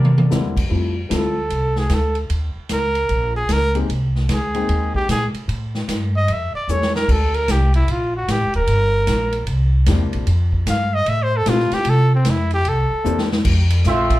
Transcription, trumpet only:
1.13 A4
1.79 G#4
1.94 A4
2.73 A#4
3.37 G#4
3.53 A#4
4.33 G#4
4.96 G4
5.12 G#4
6.17 D#5
6.33 E5
6.55 D5
6.71 C#5
6.96 A#4
7.12 A4
7.35 A#4
7.52 G4
7.76 E4
7.92 F4
8.17 F#4
8.32 G4
8.56 A#4
10.70 F5
10.94 D#5
11.09 E5
11.23 C5
11.37 A4
11.50 F4
11.74 G4
11.90 A4
12.15 C4
12.30 E4
12.54 G4
12.69 A4

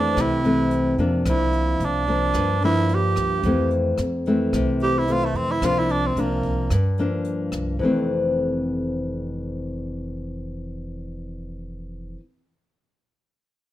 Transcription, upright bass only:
Already playing: F2
0.17 C2
0.98 F2
1.25 C2
1.80 C2
2.35 G2
3.17 C2
3.44 F2
3.99 F2
4.53 C2
5.34 F2
5.62 C2
6.16 C2
6.71 G2
7.52 C2
7.79 F1

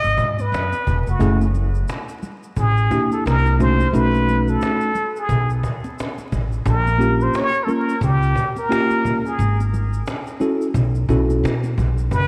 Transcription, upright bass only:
0.04 G#1
0.18 G#2
0.52 F#2
0.87 E1
1.07 F1
1.21 F#1
2.57 A1
3.26 C2
3.93 B1
5.29 B1
6.32 A1
6.66 A#1
8.01 C#2
9.39 G#1
10.74 B1
11.09 B1
11.43 B2
11.78 B1
12.11 F#1

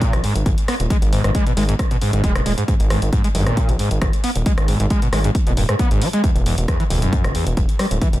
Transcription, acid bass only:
Already playing: A#2
0.13 D#3
0.24 G#2
0.46 G#2
0.68 B3
0.90 G#3
1.13 G#2
1.24 G#2
1.35 G#3
1.47 B2
1.57 G#3
1.69 G#2
1.91 B2
2.02 G#2
2.13 G#2
2.24 G#3
2.36 B2
2.46 G#3
2.58 G#2
2.68 G#2
2.90 G#2
3.13 G#2
3.24 G#3
3.35 G2
3.47 A#2
3.69 D#3
3.79 G#2
4.02 G#2
4.24 B3
4.46 G#3
4.68 G#2
4.80 G#2
4.91 G#3
5.02 B2
5.13 G#3
5.25 G#2
5.47 B2
5.57 G2
5.69 G#2
5.79 B3
5.91 G#2
6.02 G#3
6.13 G#3
6.24 E2
6.46 E2
6.68 E2
6.80 E3
6.90 D2
7.02 F#2
7.24 B2
7.35 E2
7.57 E2
7.79 G3
8.02 E3

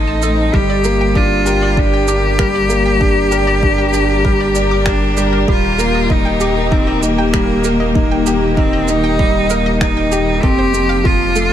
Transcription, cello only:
Already playing: D#4
0.55 G4
1.17 F4
1.79 G4
4.88 D4
5.49 F4
6.11 D#4
6.72 C4
7.03 A#3
7.97 A#3
8.58 C4
8.90 D#4
9.82 D#4
10.43 G4
11.06 F4

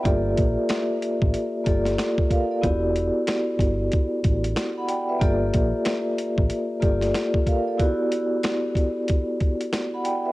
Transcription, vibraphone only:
Already playing: B4 E5
0.03 A#3 F4 G4 A4 D5
1.64 A#3 F4 G4 A4 D5
1.97 A4 D5
2.31 A#4 F5
2.51 A4 D5
2.61 B3 E4 F#4 G4 D5
4.78 F#5 B5
4.88 D5 G5
5.09 B4 E5
5.19 A#3 F4 G4 A4 D5
6.80 A#3 F4 G4 A4 D5
7.14 A4 D5
7.47 A#4 F5
7.68 A4 D5
7.78 B3 E4 F#4 G4 D5
9.94 F#5 B5
10.04 D5 G5
10.25 B4 E5

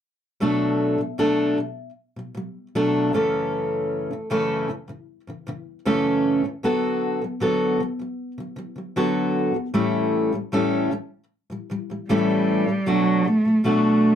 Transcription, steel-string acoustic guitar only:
0.40 B2 F#3 A3 D4 A4
0.98 B2 F#3
1.18 B2 F#3 A3 D4 A4
1.58 B2 F#3
2.16 B2 F#3
2.35 B2 F#3
2.75 B2 F#3 A3 D4 A4
3.13 F#2 C#3 E3 A3 C#4 A4
4.11 F#2 C#3 E3
4.30 F#2 C#3 E3 A3 C#4 A4
4.68 F#2 C#3 E3
4.88 F#2 C#3 E3
5.27 F#2 C#3 E3
5.47 F#2 C#3 E3
5.85 F#2 C#3 E3 A3 C#4 A4
6.44 F#2 C#3 E3
6.63 D3 F#3 B3 F#4 A4
7.22 D3 F#3
7.40 D3 F#3 B3 F#4 A4
7.80 D3 F#3
7.99 D3 F#3
8.38 D3 F#3
8.56 D3 F#3
8.76 D3 F#3
8.96 D3 F#3 B3 F#4 A4
9.54 D3 F#3
9.74 A2 E3 G3 A3 C#4 A4
10.33 A2 E3 G3
10.52 A2 E3 G3 A3 C#4 A4
10.91 A2 E3 G3
11.50 A2 E3 G3
11.70 A2 E3 G3
11.90 A2 E3 G3
12.09 A2 E3 G3 A3 C#4 A4
12.67 A2 E3 G3
12.86 B2 F#3 A3 D4 F#4
13.25 B2 F#3
13.45 B2 F#3
13.64 B2 F#3 A3 D4 F#4

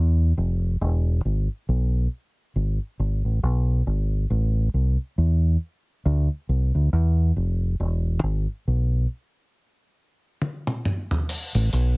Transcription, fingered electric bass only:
Already playing: E2
0.37 F1
0.81 E1
1.25 G#1
1.69 B1
2.56 G#1
2.99 G#1
3.25 A1
3.43 B1
3.87 G#1
4.30 A1
4.74 C2
5.18 E2
6.06 D2
6.49 C2
6.75 D2
6.93 E2
7.36 F1
7.80 E1
8.23 G#1
8.68 B1
11.55 A1
11.73 B1

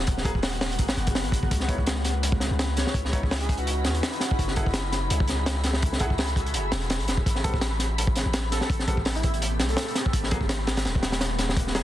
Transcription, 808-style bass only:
Already playing: D#1
0.79 G#1
0.97 F#1
1.25 B1
1.32 F#1
1.51 C#2
2.51 C#2
2.94 C#2
3.85 D#2
4.39 F#1
5.11 C#2
6.54 F#1
6.72 E1
7.00 A1
7.08 E1
7.26 A1
8.26 A1
8.70 A1
9.60 B1
10.13 G#1
10.85 D#1

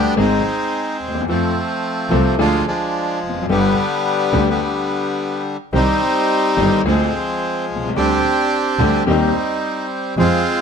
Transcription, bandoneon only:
Already playing: B3 D4 G4
0.19 G#3 C4 D#4
1.29 F3 A3 C4
2.40 G#3 D4 F4
2.67 F3 G#3 D4
3.50 D3 G3 B3
4.50 D3 G3 B3
5.75 G3 C4 D#4
6.87 F3 G#3 C4
7.96 C4 D4 G4
9.08 G3 C4 D#4
10.19 G#3 C4 F4

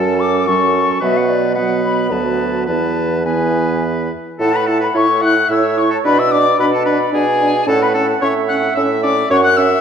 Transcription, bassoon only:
Already playing: F#2
1.02 B2
2.11 D2
2.68 E2
4.40 A2
4.95 A2
5.50 A2
6.05 B2
6.59 B2
7.14 B2
7.67 A2
8.22 A2
8.77 A2
9.30 F#2

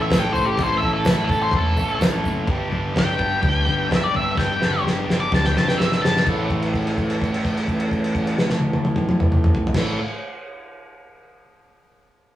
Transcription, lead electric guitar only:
0.02 E5
0.19 G5
0.33 C5
0.45 G4
0.64 C5
0.77 E5
0.94 A4
1.10 E4
1.24 A4
1.43 C5
1.56 A4
2.99 G5
3.95 E5
4.04 D5
4.16 E5
4.38 G5
5.20 D6
5.35 A5
5.46 G5
5.58 A5
5.69 G5
5.78 E5
6.01 A5

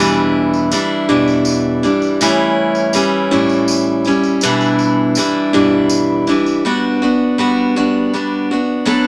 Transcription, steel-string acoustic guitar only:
Already playing: E2 B2 E3 G3 D4
0.00 E4
0.71 E3 G3 D4 E4
1.09 E2 B2 E3 G3 D4 E4
1.83 E3 G3 D4 E4
2.21 A2 E3 G3 C#4 E4
2.94 E3 G3 C#4 E4
3.31 A2 E3 G3 C#4 E4
4.05 G3 C#4 E4
4.43 E2 B2 E3 G3 D4 E4
5.17 E3 G3 D4 E4
5.53 E2 B2 E3 G3 D4 E4
6.27 E3 G3 D4 E4
6.65 G3 B3 D4 F#4
7.02 B3 D4 F#4
7.38 G3 B3 D4 F#4
7.76 G3 B3 D4 F#4
8.13 G3 B3 D4 F#4
8.51 B3 D4 F#4
8.85 F#3 B3 D4 A4

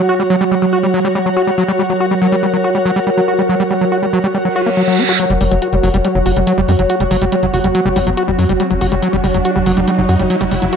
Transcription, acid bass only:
0.09 F#4
0.20 G3
0.30 F#3
0.41 G3
0.51 G3
0.62 F#3
0.73 F#4
0.83 G3
0.94 F#3
1.05 G3
1.15 G3
1.26 F#3
1.37 F#4
1.47 G3
1.58 F#3
1.68 G3
1.79 G3
1.90 F#3
2.00 F#4
2.11 G3
2.22 F#3
2.32 G3
2.43 G3
2.54 F#3
2.64 F#4
2.75 G3
2.85 F#3
2.96 G3
3.07 G3
3.17 F#3
3.28 F#4
3.39 G3
3.49 F#3
3.60 G3
3.71 G3
3.81 F#3
3.92 F#4
4.03 G3
4.13 F#3
4.24 G3
4.34 G3
4.45 F#3
4.56 F#4
4.66 A#3
4.77 F#3
4.88 F#3
4.98 C#4
5.09 F#4
5.20 F#3
5.30 G3
5.41 G3
5.51 F#3
5.62 F#4
5.73 G3
5.83 F#3
5.94 G3
6.05 G3
6.15 F#3
6.26 F#4
6.37 G3
6.47 F#3
6.58 G3
6.68 G3
6.79 F#3
6.90 F#4
7.00 G3
7.11 F#3
7.22 G3
7.32 G3
7.43 F#3
7.54 F#4
7.64 G3
7.75 F#3
7.85 G3
7.96 G3
8.07 F#3
8.17 F#4
8.28 G3
8.39 F#3
8.49 G3
8.60 G3
8.71 F#3
8.81 F#4
8.92 G3
9.02 F#3
9.13 G3
9.24 G3
9.34 F#3
9.45 F#4
9.56 G3
9.66 F#3
9.77 G3
9.88 G3
9.98 F#3
10.09 F#4
10.20 G3
10.30 F#3
10.41 G3
10.51 G3
10.62 F#3
10.73 F#4

